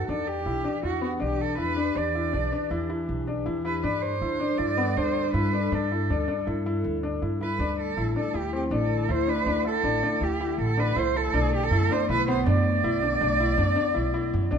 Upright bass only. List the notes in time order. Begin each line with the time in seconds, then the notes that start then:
0.08 E2
0.45 B1
0.83 E2
1.21 B1
1.59 E2
1.96 E2
2.33 B1
2.70 E2
3.09 B1
3.46 E2
3.83 G2
4.21 D2
4.59 G2
4.96 D2
5.34 G2
5.72 G2
6.09 D2
6.47 G2
6.84 D2
7.22 G2
7.59 D2
7.97 A1
8.34 D2
8.71 A1
9.09 D2
9.46 D2
9.83 A1
10.21 D2
10.58 A1
10.96 C2
11.34 B1
11.71 F#2
12.09 B1
12.46 F#2
12.83 B1
13.21 B1
13.58 F#2
13.96 B1
14.34 F#2
14.52 B1